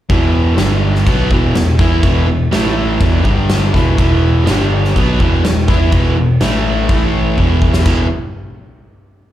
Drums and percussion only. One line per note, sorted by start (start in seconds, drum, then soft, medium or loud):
0.10 kick medium
0.10 crash medium
0.58 snare loud
0.58 crash medium
0.95 snare soft
1.07 kick loud
1.07 crash medium
1.31 kick medium
1.55 snare loud
1.55 crash medium
1.79 kick loud
1.79 snare soft
2.03 kick loud
2.03 crash medium
2.53 snare loud
2.53 crash medium
3.01 kick loud
3.01 crash medium
3.25 kick loud
3.49 snare loud
3.49 crash medium
3.74 kick medium
3.74 snare soft
3.98 kick loud
3.98 crash medium
4.47 snare loud
4.47 crash medium
4.84 snare soft
4.96 kick medium
4.96 crash medium
5.20 kick medium
5.45 snare loud
5.45 crash medium
5.68 kick loud
5.68 snare soft
5.92 kick loud
5.92 crash medium
6.41 snare loud
6.41 crash medium
6.89 kick medium
6.89 crash medium
7.38 kick medium
7.62 kick medium
7.73 snare medium
7.86 kick loud
7.86 china medium